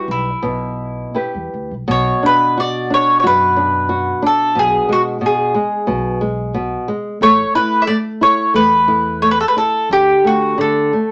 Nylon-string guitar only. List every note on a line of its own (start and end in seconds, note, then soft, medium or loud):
0.00 0.29 G3 soft
0.00 0.28 E4 soft
0.00 0.29 B4 soft
0.42 1.13 B2 medium
1.15 1.73 E4 soft
1.15 1.73 G4 soft
1.15 1.73 B4 soft
1.88 4.52 B2 medium
2.23 2.56 D4 soft
2.57 2.90 F#4 soft
2.90 3.22 D4 soft
3.24 3.56 F#4 medium
3.57 3.88 D4 soft
3.89 4.21 F#4 medium
4.22 4.55 D4 medium
4.55 5.20 B2 medium
4.89 5.21 G#3 medium
5.21 5.53 B2 medium
5.55 5.87 G#3 medium
5.87 6.19 B2 medium
6.21 6.53 G#3 soft
6.54 6.87 B2 medium
6.88 7.20 G#3 medium
7.22 7.86 A3 medium
7.55 7.87 E4 medium
7.87 8.20 A3 medium
8.21 8.54 E4 soft
8.54 8.87 A3 medium
8.88 9.21 E4 soft
9.22 9.55 A3 medium
9.57 9.89 E4 medium
9.91 10.57 D3 medium
10.24 10.57 A3 soft
10.58 10.91 D3 medium
10.93 11.12 A3 soft